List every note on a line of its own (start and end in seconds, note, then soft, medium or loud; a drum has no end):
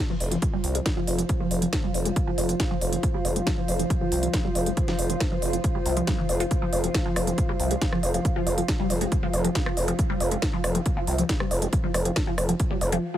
0.00 13.03 F3 medium
0.00 13.03 F4 medium
0.05 13.03 C5 medium
0.10 0.16 F3 loud
0.20 0.37 F1 medium
0.20 13.03 F5 medium
0.20 open hi-hat loud
0.32 0.38 F3 medium
0.32 closed hi-hat medium
0.42 kick loud
0.42 closed hi-hat medium
0.53 0.62 G3 loud
0.64 0.80 C2 medium
0.64 open hi-hat loud
0.75 0.81 G#3 medium
0.75 closed hi-hat medium
0.86 kick loud
0.86 snare loud
0.86 closed hi-hat medium
0.97 1.03 F3 loud
1.07 1.24 F1 medium
1.07 open hi-hat loud
1.19 1.22 F3 medium
1.19 closed hi-hat medium
1.29 kick loud
1.29 closed hi-hat medium
1.40 1.46 F3 loud
1.51 1.67 F1 medium
1.51 open hi-hat loud
1.62 1.68 F3 medium
1.62 closed hi-hat medium
1.73 kick loud
1.73 snare loud
1.73 closed hi-hat medium
1.84 1.93 G3 loud
1.94 2.11 F1 medium
1.94 open hi-hat loud
2.05 2.11 G#3 medium
2.05 closed hi-hat medium
2.16 kick loud
2.16 closed hi-hat medium
2.27 2.33 F3 loud
2.38 2.54 F1 loud
2.38 open hi-hat loud
2.49 2.53 F3 medium
2.49 closed hi-hat medium
2.60 kick loud
2.60 snare loud
2.60 closed hi-hat medium
2.71 2.77 F3 loud
2.81 2.97 F1 medium
2.81 open hi-hat loud
2.93 2.98 F3 medium
2.93 closed hi-hat medium
3.03 kick loud
3.03 closed hi-hat medium
3.14 3.23 G3 loud
3.25 3.41 F1 loud
3.25 open hi-hat loud
3.36 3.42 G#3 medium
3.36 closed hi-hat medium
3.47 kick loud
3.47 snare loud
3.47 closed hi-hat medium
3.58 3.64 F3 loud
3.68 3.84 F1 medium
3.68 open hi-hat loud
3.79 3.83 F3 medium
3.79 closed hi-hat medium
3.90 kick loud
3.90 closed hi-hat medium
4.01 4.07 F3 loud
4.12 4.28 C2 medium
4.12 open hi-hat loud
4.23 4.29 F3 medium
4.23 closed hi-hat medium
4.34 kick loud
4.34 snare loud
4.34 closed hi-hat medium
4.45 4.53 G3 loud
4.55 4.71 F1 medium
4.55 open hi-hat loud
4.66 4.72 G#3 medium
4.66 closed hi-hat medium
4.77 kick loud
4.77 closed hi-hat medium
4.88 4.94 F3 loud
4.88 snare medium
4.99 5.15 F1 medium
4.99 open hi-hat loud
5.10 5.13 F3 medium
5.10 closed hi-hat medium
5.20 kick loud
5.20 snare loud
5.20 closed hi-hat medium
5.32 5.37 F3 loud
5.42 5.58 F1 medium
5.42 open hi-hat loud
5.53 5.59 F3 medium
5.53 closed hi-hat medium
5.64 kick loud
5.64 closed hi-hat medium
5.75 5.84 G3 loud
5.86 6.02 C2 loud
5.86 open hi-hat loud
5.97 6.06 F3 loud
5.97 closed hi-hat medium
6.07 6.14 G3 medium
6.07 kick loud
6.07 snare loud
6.07 closed hi-hat medium
6.18 6.22 E3 loud
6.29 6.45 F1 medium
6.29 open hi-hat loud
6.40 6.49 F4 loud
6.40 closed hi-hat medium
6.51 kick loud
6.51 closed hi-hat medium
6.62 6.68 F3 loud
6.73 6.89 F1 medium
6.73 open hi-hat loud
6.84 6.87 F3 medium
6.84 closed hi-hat medium
6.94 kick loud
6.94 snare loud
6.94 closed hi-hat medium
7.05 7.11 F3 loud
7.16 7.32 F1 medium
7.16 cross-stick medium
7.16 open hi-hat loud
7.27 7.33 F3 medium
7.27 closed hi-hat medium
7.38 kick loud
7.38 closed hi-hat medium
7.49 7.58 G3 loud
7.60 7.76 C2 medium
7.60 open hi-hat loud
7.71 7.77 G#3 medium
7.71 closed hi-hat medium
7.82 kick loud
7.82 snare loud
7.82 closed hi-hat medium
7.92 7.98 F3 loud
7.92 cross-stick medium
8.03 8.19 F1 medium
8.03 open hi-hat loud
8.14 8.18 F3 medium
8.14 closed hi-hat medium
8.25 kick loud
8.25 closed hi-hat medium
8.36 8.42 F3 loud
8.47 8.63 F1 medium
8.47 open hi-hat loud
8.58 8.64 F3 medium
8.58 closed hi-hat medium
8.68 kick loud
8.68 snare loud
8.68 closed hi-hat medium
8.79 8.88 G3 loud
8.90 9.06 F1 medium
8.90 open hi-hat loud
9.01 9.07 G#3 medium
9.01 closed hi-hat medium
9.12 kick loud
9.12 closed hi-hat medium
9.23 9.29 F3 loud
9.33 9.50 F1 loud
9.33 open hi-hat loud
9.45 9.48 F3 medium
9.45 closed hi-hat medium
9.55 kick loud
9.55 snare loud
9.55 closed hi-hat medium
9.66 9.72 F3 loud
9.66 cross-stick loud
9.77 9.93 F1 medium
9.77 open hi-hat loud
9.88 9.94 F3 medium
9.88 closed hi-hat medium
9.99 kick loud
9.99 closed hi-hat medium
10.10 10.19 G3 loud
10.20 10.37 F1 loud
10.20 open hi-hat loud
10.31 10.37 G#3 medium
10.31 closed hi-hat medium
10.42 kick loud
10.42 snare loud
10.42 closed hi-hat medium
10.53 10.59 F3 loud
10.64 10.80 F1 medium
10.64 cross-stick medium
10.64 open hi-hat loud
10.75 10.79 F3 medium
10.75 closed hi-hat medium
10.86 kick loud
10.86 closed hi-hat medium
10.97 11.03 F3 loud
11.07 11.24 C2 medium
11.07 open hi-hat loud
11.18 11.24 F3 medium
11.18 closed hi-hat medium
11.29 kick loud
11.29 snare loud
11.29 closed hi-hat medium
11.40 11.49 G3 loud
11.40 cross-stick loud
11.51 11.67 F1 medium
11.51 open hi-hat loud
11.62 11.68 G#3 medium
11.62 closed hi-hat medium
11.73 kick loud
11.73 closed hi-hat medium
11.84 11.90 F3 loud
11.94 12.11 F1 medium
11.94 cross-stick medium
11.94 open hi-hat loud
12.05 12.09 F3 medium
12.05 closed hi-hat medium
12.16 kick loud
12.16 snare loud
12.16 closed hi-hat medium
12.27 12.33 F3 loud
12.38 12.54 F1 medium
12.38 cross-stick medium
12.38 open hi-hat loud
12.49 12.55 F3 medium
12.49 closed hi-hat medium
12.60 kick loud
12.60 closed hi-hat medium
12.71 12.80 G3 loud
12.81 12.97 F1 loud
12.81 open hi-hat loud
12.92 13.01 F3 loud
12.92 closed hi-hat medium
13.14 13.18 F3 medium